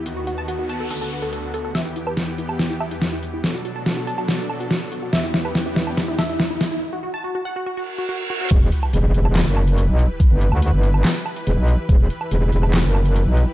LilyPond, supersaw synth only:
\new Staff \with { instrumentName = "Supersaw synth" } { \clef bass \time 4/4 \key e \minor \tempo 4 = 142 << { <b fis'>1 | <b g'>1 | <d' a'>1 | <b g'>1 |
r1 | <g' b'>1~ | <g' b'>1~ | <g' b'>1 | } \\ { <dis, dis>2 <d, d>2 | <e, e>1 | <b, fis>1 | <e, e>1 |
r1 | <e e'>1~ | <e e'>1~ | <e e'>1 | } >> }